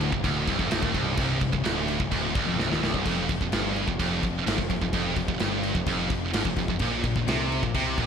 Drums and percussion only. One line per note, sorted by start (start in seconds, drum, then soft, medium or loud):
0.01 crash medium
0.12 kick loud
0.24 kick loud
0.24 crash medium
0.48 kick loud
0.48 crash medium
0.59 kick medium
0.71 snare loud
0.71 crash loud
0.83 kick loud
0.94 kick medium
0.94 crash medium
1.17 kick loud
1.17 crash loud
1.41 kick loud
1.41 crash medium
1.53 kick loud
1.65 snare loud
1.65 crash medium
1.88 crash medium
2.00 kick loud
2.12 kick medium
2.12 crash medium
2.35 kick loud
2.35 crash medium
2.59 snare medium
2.72 snare medium
2.84 snare loud
2.94 kick medium
3.06 kick loud
3.06 crash medium
3.29 kick loud
3.29 crash medium
3.41 kick loud
3.52 snare loud
3.52 crash medium
3.76 crash medium
3.88 kick loud
4.00 kick loud
4.00 crash medium
4.23 kick medium
4.23 crash medium
4.47 snare loud
4.47 crash loud
4.58 kick loud
4.70 kick loud
4.70 crash medium
4.82 kick medium
4.93 kick loud
4.93 crash medium
5.16 kick loud
5.16 crash medium
5.28 kick loud
5.39 snare loud
5.39 crash medium
5.63 crash medium
5.75 kick loud
5.86 kick loud
5.86 crash medium
6.10 kick loud
6.10 crash medium
6.33 snare loud
6.33 crash loud
6.45 kick loud
6.56 kick medium
6.56 crash medium
6.68 kick loud
6.79 kick loud
6.79 crash loud
7.04 kick loud
7.04 crash medium
7.16 kick loud
7.28 snare loud
7.28 crash medium
7.52 crash medium
7.63 kick loud
7.75 kick medium
7.75 crash medium
7.98 kick loud
7.98 crash medium